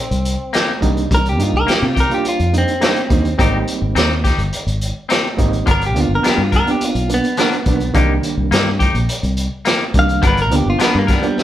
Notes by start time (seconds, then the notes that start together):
Already playing: C4
0.11 C2, closed hi-hat
0.25 closed hi-hat
0.53 A#3 D#4 G4, snare, closed hi-hat
0.81 C2 G3 A#3 D4 D#4, kick, closed hi-hat
0.97 closed hi-hat
1.11 C2 A#4, kick, closed hi-hat
1.26 G4, closed hi-hat
1.38 G2 G3 A#3 D4 D#4, closed hi-hat
1.43 F4
1.53 C2 A#4
1.67 A#3 D#4 G4, muted fingered electric bass stroke, snare, closed hi-hat
1.71 G4
1.82 C3 F4
1.95 D#4 G4, kick, closed hi-hat
2.00 A#4
2.09 G3 A#3 D4 F4, closed hi-hat
2.14 G4
2.25 F4, closed hi-hat
2.40 F2, closed hi-hat
2.52 G3 A#3 D4 D#4, closed hi-hat
2.58 C4
2.68 closed hi-hat
2.81 G3 A#3 D4 D#4 G4, snare, closed hi-hat
2.96 closed hi-hat
3.09 D#2 G3 A#3 D4 D#4, kick, closed hi-hat
3.25 closed hi-hat
3.38 G#1 G3 A#3 C4 D#4 G4, kick, closed hi-hat
3.68 closed hi-hat
3.82 G#1
3.95 D#2 C4 D#4 G4, snare, closed hi-hat
4.24 D#4 G4, kick, snare, closed hi-hat
4.38 G1, closed hi-hat
4.53 closed hi-hat
4.67 G#1, closed hi-hat
4.81 closed hi-hat
5.09 C4 D#4 G4, snare, closed hi-hat
5.37 G#1 G3 A#3 C4 D#4, kick, closed hi-hat
5.53 closed hi-hat
5.66 G1 F3 B3 D4 A#4, kick, closed hi-hat
5.71 A#4
5.81 closed hi-hat
5.86 G4
5.94 D2 F3 A#3 B3 D4, closed hi-hat
6.00 F4
6.09 G1
6.15 A#4
6.23 F3 B3 D4 A#4, muted fingered electric bass stroke, snare, closed hi-hat
6.29 G4
6.38 G2
6.43 F4
6.52 B3 D4 A#4, kick, closed hi-hat
6.56 A#4
6.66 F3 A#3 B3 D4, closed hi-hat
6.71 G4
6.81 F4, closed hi-hat
6.95 B1, closed hi-hat
7.08 F3 A#3 B3 D4, closed hi-hat
7.14 B3
7.24 closed hi-hat
7.37 F3 A#3 B3 D4 A#4, snare, closed hi-hat
7.52 closed hi-hat
7.65 B1 F3 A#3 B3 D4, kick, closed hi-hat
7.80 closed hi-hat
7.94 C2 D#3 G3 A#3 D4 D#4 G4, kick, closed hi-hat
8.23 closed hi-hat
8.37 C2
8.51 G2 A#3 D#4 G4, snare, closed hi-hat
8.79 D#4 G4, kick, closed hi-hat
8.95 A#1, closed hi-hat
9.09 closed hi-hat
9.23 C2, closed hi-hat
9.37 closed hi-hat
9.65 A#3 D#4 G4, snare, closed hi-hat
9.94 C2 D#3 G3 A#3 D4, kick, closed hi-hat
9.99 F5
10.09 closed hi-hat
10.22 G1 F3 B3 D4 A#4, kick, closed hi-hat
10.27 B4
10.37 closed hi-hat
10.42 A#4
10.51 D2 F3 A#3 B3 D4, closed hi-hat
10.56 G4
10.66 G1 F4
10.79 F3 B3 D4 A#4, muted fingered electric bass stroke, snare, closed hi-hat
10.83 B3
10.95 G2 A#3
11.07 B3 D4 A#4, kick, snare, closed hi-hat
11.13 G3
11.22 F3 A#3 B3 D4, closed hi-hat
11.38 snare